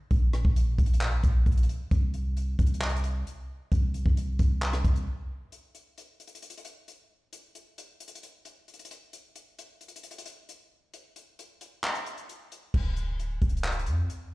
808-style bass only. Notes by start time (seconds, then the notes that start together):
0.11 A#1
0.45 A#1
0.78 A#1
1.24 A#1
1.46 A#1
1.91 C2
2.59 C2
3.72 C2
4.06 C2
4.39 C2
4.84 C2
12.74 D1
13.42 D1
13.87 F2